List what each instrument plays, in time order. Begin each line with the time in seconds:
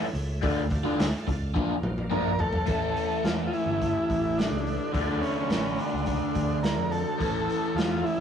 Already playing: tonewheel organ A4 C#5 E5
0.14 picked electric bass C#2, open hi-hat
0.42 picked electric bass D2, overdriven electric guitar D3 A3 D4 F4, tonewheel organ A4 D5 F5, kick, open hi-hat
0.70 picked electric bass D2, kick, open hi-hat
0.84 overdriven electric guitar D3 A3 D4 F4
0.99 picked electric bass D2, snare, open hi-hat
1.27 picked electric bass C#2, muted overdriven electric guitar stroke, kick, open hi-hat
1.54 picked electric bass A#1, overdriven electric guitar F3 A#3 D4 F4, tonewheel organ A#4 D5, kick, high tom
1.82 picked electric bass A#1, mid tom
1.98 mid tom
2.10 overdriven electric guitar F3 A#3 D4 F4, transistor combo organ A#4, mid tom
2.39 transistor combo organ A4, floor tom
2.53 floor tom
2.66 picked electric bass A1, overdriven electric guitar A2 E3 A3 C#4 E4, tonewheel organ A4 C#5 E5, kick, open hi-hat
2.97 open hi-hat
3.23 picked electric bass E2, transistor combo organ F4, snare, open hi-hat
3.47 transistor combo organ F4
3.53 transistor combo organ E4, open hi-hat
3.66 picked electric bass G1
3.81 kick, open hi-hat
4.10 picked electric bass A1, kick, open hi-hat
4.38 transistor combo organ D4, snare, open hi-hat
4.50 picked electric bass C#2
4.67 open hi-hat
4.92 picked electric bass D2, overdriven electric guitar D3 A3 D4 F4, transistor combo organ D4, tonewheel organ F5, kick, open hi-hat
5.21 transistor combo organ C#4, open hi-hat
5.50 picked electric bass A1, snare, open hi-hat
5.78 transistor combo organ D4, open hi-hat
5.93 picked electric bass C#2
6.06 kick, open hi-hat
6.35 picked electric bass D2, kick, open hi-hat
6.63 transistor combo organ A#4, snare, open hi-hat
6.77 picked electric bass F2
6.91 transistor combo organ A4, open hi-hat
7.18 picked electric bass A1, overdriven electric guitar A2 E3 A3 C#4, tonewheel organ C#5 E5, kick, open hi-hat
7.22 overdriven electric guitar E4
7.49 open hi-hat
7.75 picked electric bass E2, transistor combo organ F4, snare, open hi-hat
8.04 transistor combo organ E4, open hi-hat